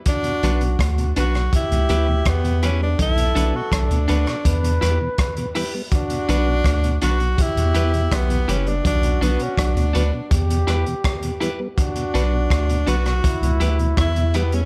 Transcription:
<<
  \new Staff \with { instrumentName = "Clean electric guitar" } { \time 4/4 \key b \minor \tempo 4 = 82 r8 <d' fis' b'>16 r8. <d' fis' b'>16 r8. <e' g' b'>16 r8. <e' g' b'>16 r16 | r8 <d' fis' b'>16 r8. <d' fis' b'>16 r8. <e' g' b'>16 r8. <e' g' b'>16 r16 | r8 <d' fis' b'>16 r8. <d' fis' b'>16 r8. <e' g' b'>16 r8. <e' g' b'>16 r16 | r8 <d' fis' b'>16 r8. <d' fis' b'>16 r8. <e' g' b'>16 r8. <e' g' b'>16 r16 |
r8 <d' fis' b'>16 r8. <d' fis' b'>16 r8. <e' g' b'>16 r8. <e' g' b'>16 r16 | }
  \new Staff \with { instrumentName = "Trombone" } { \time 4/4 \key b \minor fis'4. r8 g'4. r8 | a'4. r8 b'4. r8 | fis'4. r8 g'4. r8 | fis'4. r8 g'4. r8 |
fis'4. r8 e'4. r8 | }
  \new Staff \with { instrumentName = "Tenor saxophone" } { \time 4/4 \key b \minor d'4 r8 fis'8 e'4 b8 cis'16 d'16 | e'8. fis'16 d'2 r4 | d'4. fis'8 e'4 b8 cis'16 d'16 | d'8 b16 cis'16 d'4 r2 |
d'4. fis'4 r8 e'8 b16 cis'16 | }
  \new Staff \with { instrumentName = "Tonewheel organ" } { \clef bass \time 4/4 \key b \minor r16 b,16 <d fis b>16 b,16 r16 b,16 <d fis b>16 b,16 r16 <e, b,>16 <e g b>16 <e, b,>16 r16 <e, b,>16 <e g b>16 <g b>16 | r16 b,16 <d fis b>16 b,16 r16 b,16 <d fis b>16 b,16 r16 <e, b,>16 <e g b>16 <e, b,>16 r16 <e, b,>16 <e g b>16 <g b>16 | r16 b,16 <d fis b>16 b,16 r16 b,16 <d fis b>16 b,16 r16 <e, b,>16 <e g b>16 <e, b,>16 r16 <e, b,>16 <e g b>16 <g b>16 | r16 b,16 <d fis b>16 b,16 r16 b,16 <d fis b>16 b,16 r16 <e, b,>16 <e g b>16 <e, b,>16 r16 <e, b,>16 <e g b>16 <g b>16 |
r16 b,16 <d fis b>16 b,16 r16 b,16 <d fis b>16 b,16 r16 <e, b,>16 <e g b>16 <e, b,>16 r16 <e, b,>16 <e g b>16 <g b>16 | }
  \new Staff \with { instrumentName = "Sub bass" } { \clef bass \time 4/4 \key b \minor r8 b,,8 d,8 b,,8 r16 cis,16 d,8 e,4 | b,,8 b,,16 r16 b,,16 d,16 d,16 r16 e,8 e,16 r4 r16 | r8 b,,8 d,8 b,,8 r16 e,16 e,8 b,,8 fis,,8 | b,,8 b,,16 r16 b,,16 d,16 d,16 r16 e,8 e,16 r4 r16 |
r8 b,,8 d,8 b,,8 r16 cis,16 d,8 e,4 | }
  \new DrumStaff \with { instrumentName = "Drums" } \drummode { \time 4/4 <hh bd>16 hh16 hh16 hh16 <hh bd ss>16 hh16 hh16 <hh ss>16 <hh bd>16 hh16 hh8 <hh bd ss>16 hh16 hh8 | <hh bd>16 hh16 hh8 <hh bd ss>16 hh16 hh16 <hh ss>16 <hh bd>16 hh16 <hh ss>8 <hh bd ss>16 hh16 hho8 | <hh bd>16 hh16 hh8 <hh bd ss>16 hh16 hh16 hh16 <hh bd>16 hh16 hh16 hh16 <hh bd ss>16 hh16 hh16 hh16 | <hh bd>16 hh16 hh16 hh16 <hh bd ss>16 hh16 hh8 <hh bd>16 hh16 <hh ss>16 hh16 <hh bd ss>16 hh16 hh8 |
<hh bd>16 hh16 hh8 <hh bd ss>16 hh16 hh16 <hh ss>16 <hh bd>16 hh16 hh16 hh16 <hh bd ss>16 hh16 hh16 hh16 | }
>>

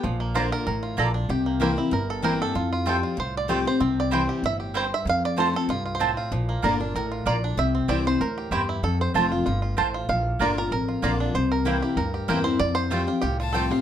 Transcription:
<<
  \new Staff \with { instrumentName = "Fiddle" } { \time 4/4 \key f \major \tempo 4 = 191 r1 | r1 | r1 | r1 |
r1 | r1 | r1 | r1 |
r1 | r1 | r2 r8 a''4 f''8 | }
  \new Staff \with { instrumentName = "Five-string banjo" } { \time 4/4 \key f \major << { r4 c''8 bes'4. a'4 | g'4 r4. a'8 bes'8 a'8~ | a'8 f'8 a'8 r8 c''8 d''4 c''8 | r8 d''8 c''4 e''8 r8 c''8 e''8 |
f''8 d''8 c''8 a'8 f'8. c''4~ c''16~ | c''4~ c''16 r4. r16 d''4 | e''4 d''8 c''4. g'4 | a'8 c''8 r2 c''4 |
f''4 d''8 bes'4. d''4 | c''8 bes'8 r2 r8 c''8 | d''8 c''4. g'4 a'4 | } \\ { f8 bes4. bes'8 f'4 d'8 | r8 bes8 bes'8 e'8 bes'4. r8 | f'4. f'4. c'4 | c'4. g'4 g'4. |
r2 r8 f'8 c'8 f'8 | f8 bes8 bes'8 d'8 bes'8 f'4 d'8 | r8 c'4. bes'8 g'4 e'8 | r4 f'8 f'8 f'8 f'4 f'8 |
r2 bes'8 f'4 d'8 | r4 bes8 g'8 bes'8 g'8 bes'4 | r4 f'8 f'4 f'4 f'8 | } >> }
  \new Staff \with { instrumentName = "Mandolin" } { \time 4/4 \key f \major r4 <bes f' d'' bes''>8 r4. <bes f' d'' bes''>8 r8 | r4 <bes e' c'' g''>8 r4. <bes e' c'' g''>8 r8 | r4 <a f' c'' g''>8 r4. <a f' c'' g''>8 r8 | r4 <c' e' c'' g''>8 r4. <c' e' c'' g''>8 r8 |
r4 <c' f' c'' a''>8 r4. <c' f' c'' a''>8 r8 | r4 <bes f' d'' bes''>8 r4. <bes f' d'' bes''>8 r8 | r4 <c' e' c'' g''>8 r4. <c' e' c'' g''>8 r8 | r4 <c' f' c'' a''>8 r4. <c' f' c'' a''>8 r8 |
r4 <bes f' d'' bes''>8 r4. <bes f' d'' bes''>8 r8 | r4 <bes e' c'' g''>8 r4. <bes e' c'' g''>8 r8 | r4 <a f' c'' g''>8 r4. <a f' c'' g''>8 r8 | }
  \new Staff \with { instrumentName = "Steel-string acoustic guitar" } { \time 4/4 \key f \major << { r4 <d bes d' f'>4 r2 | r4 <e bes c' e'>8 <c' e'>8 r4 <e bes c' e'>4 | r4 <f g c' g'>4 r4 <f g c' g'>8 <c' g'>8 | r4 <e g c' e'>4 r2 |
r4 <f a c' f'>8 <c' f'>8 r2 | r4 <d bes d' f'>8 <d' f'>8 r2 | r4 <e g c' e'>8 <c' e'>8 r2 | r4 <f a c' f'>8 <c' f'>8 r2 |
r4 <d bes d' f'>8 <d' f'>8 r4 <d bes d' f'>4 | r4 <e bes c' e'>8 <c' e'>8 r4 <e bes c' e'>8 <c' e'>8 | r4 <f g c' g'>8 <c' g'>8 r4 <f g c' g'>8 <c' g'>8 | } \\ { bes,2 a,4 bes,4 | c2 g,2 | f,2 a,2 | c2 a,4 g,4 |
f,2 g,4 a,4 | bes,2 a,4 bes,4 | c2 a,4 g,4 | f,2 g,4 a,4 |
bes,2 f,2 | c2 g,2 | f,2 a,2 | } >> }
  \new Staff \with { instrumentName = "Upright bass" } { \clef bass \time 4/4 \key f \major bes,,2 a,,4 bes,,4 | c,2 g,,2 | f,2 c,2 | c,2 g,,2 |
f,2 c,2 | bes,,4 g,,4 a,,4 bes,,4 | c,4 c,4 d,4 e,4 | f,4 f,,4 g,,4 a,,4 |
bes,,4 g,,4 a,,4 bes,,4 | c,2 d,4 e,4 | f,2 c,2 | }
>>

